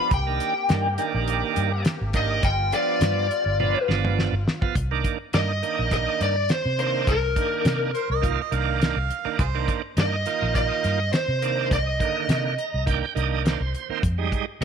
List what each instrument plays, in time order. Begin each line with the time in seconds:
Already playing: tonewheel organ F3, lead electric guitar B5
0.00 tonewheel organ B3 D4
0.11 fingered electric bass C2, horn section A#3 C4 G4, lead electric guitar G5, kick, closed hi-hat
0.27 tonewheel organ D#3 A#3 D4
0.40 closed hi-hat
0.69 fingered electric bass G2, tonewheel organ D#3 A#3 D4, snare, closed hi-hat
0.98 tonewheel organ D#3 A#3 D4, closed hi-hat
1.14 fingered electric bass A#1
1.28 closed hi-hat
1.56 fingered electric bass G2, closed hi-hat
1.85 snare, closed hi-hat
2.01 fingered electric bass G#1
2.13 tonewheel organ D#3 A#3 D4, lead electric guitar D#5, kick, closed hi-hat
2.43 fingered electric bass G1, horn section G3 B3 F4, lead electric guitar G5, kick, closed hi-hat
2.72 tonewheel organ F3 B3 D4, lead electric guitar D5, closed hi-hat
3.01 fingered electric bass G2, snare, closed hi-hat
3.31 closed hi-hat
3.46 fingered electric bass G1
3.60 tonewheel organ F3 B3 D4, high tom
3.88 fingered electric bass G1, tonewheel organ F3 B3 D4, snare
4.05 mid tom
4.19 snare
4.32 fingered electric bass G1
4.48 snare
4.61 tonewheel organ F3 B3 F4, muted fingered electric bass stroke, kick
4.75 fingered electric bass C2, kick, closed hi-hat
4.91 tonewheel organ D#3 A#3 D4
5.04 kick, closed hi-hat
5.33 fingered electric bass G2, tonewheel organ D#3 A#3 D4, lead electric guitar D#5, snare, closed hi-hat
5.62 tonewheel organ D#3 A#3 D4, closed hi-hat
5.79 fingered electric bass A#1
5.91 lead electric guitar D#5, kick, closed hi-hat
6.21 fingered electric bass G2, lead electric guitar D5, closed hi-hat
6.49 lead electric guitar C5, snare, closed hi-hat
6.66 fingered electric bass C3
6.78 tonewheel organ D#3 A#3 D4, lead electric guitar C5, closed hi-hat
7.07 fingered electric bass C2, lead electric guitar A#4, kick, closed hi-hat
7.36 tonewheel organ D#3 A#3 D4, kick, closed hi-hat
7.65 fingered electric bass C3, snare, closed hi-hat
7.95 harmonica C5, closed hi-hat
8.10 fingered electric bass C2, harmonica D#5
8.22 tonewheel organ D#3 A#3 F4, kick, closed hi-hat
8.41 harmonica D#5
8.51 fingered electric bass C2, tonewheel organ D#3 A#3 D4, harmonica F5, closed hi-hat
8.82 snare, closed hi-hat
8.96 fingered electric bass C2
9.10 closed hi-hat
9.25 tonewheel organ D#3 A#3 D4, muted fingered electric bass stroke
9.39 fingered electric bass C2, harmonica F4 G#4 C5, kick, closed hi-hat
9.55 tonewheel organ D#3 A#3 D4
9.68 kick, closed hi-hat
9.97 fingered electric bass G2, tonewheel organ D#3 A#3 D4, lead electric guitar D#5, snare, closed hi-hat
10.26 tonewheel organ D#3 A#3 F4, closed hi-hat
10.42 fingered electric bass A#1
10.55 lead electric guitar D#5, kick, closed hi-hat
10.84 fingered electric bass G2, closed hi-hat
11.13 lead electric guitar C5, snare, closed hi-hat
11.28 fingered electric bass C3
11.42 tonewheel organ D#3 A#3 D4, closed hi-hat
11.71 fingered electric bass C2, lead electric guitar D#5, kick, closed hi-hat
11.99 tonewheel organ D3 D#3 A#3, kick, closed hi-hat
12.29 fingered electric bass C3, snare, closed hi-hat
12.58 tonewheel organ A#5, closed hi-hat
12.74 fingered electric bass C2
12.86 tonewheel organ D#3 A#3 D4 G5, kick, closed hi-hat
13.15 fingered electric bass C2, tonewheel organ D#3 A#3 D4 D#5, closed hi-hat
13.45 tonewheel organ C5, snare, closed hi-hat
13.60 fingered electric bass C2
13.75 closed hi-hat
13.89 tonewheel organ D#3 A#3 C4, muted fingered electric bass stroke
14.03 fingered electric bass F2, kick, closed hi-hat
14.18 tonewheel organ G3 G#3 D#4
14.32 kick, closed hi-hat
14.61 fingered electric bass C2, tonewheel organ G3